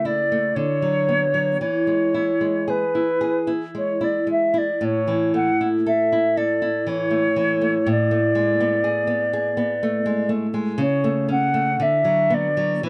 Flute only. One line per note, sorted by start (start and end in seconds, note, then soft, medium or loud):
0.06 0.57 D5 soft
0.55 1.60 C#5 soft
1.61 2.71 C#5 soft
2.70 3.49 B4 soft
3.78 4.05 C#5 soft
4.04 4.30 D5 soft
4.31 4.59 E5 soft
4.58 4.86 D5 soft
4.84 5.35 C#5 soft
5.36 5.68 F#5 soft
5.87 6.38 E5 soft
6.37 6.90 D5 medium
6.88 7.88 C#5 soft
7.91 10.30 D5 medium
10.82 11.27 C#5 medium
11.31 11.84 F#5 medium
11.82 12.36 E5 soft
12.34 12.84 D5 medium
12.85 12.89 B4 medium